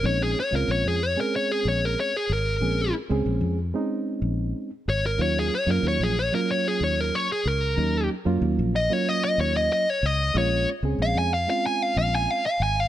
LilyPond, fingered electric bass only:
\new Staff \with { instrumentName = "Fingered electric bass" } { \clef bass \time 4/4 \key bes \minor \tempo 4 = 93 bes,,8 r16 des,16 bes,,16 f,8 r8. bes,,8 r8 aes,,8 | bes,,8 r16 des,16 bes,,16 f,8 r8. bes,,8 r8 aes,,8 | ees,8 r16 ges,16 ees,16 bes,,8 r8. ees,8 r8 des,8 | ees,8 r16 ges,16 ees,16 bes,,8 r8. ees,8 r8 des,8 |
bes,,8 r16 des,16 bes,,16 f,8 r8. bes,,8 r8 aes,,8 | }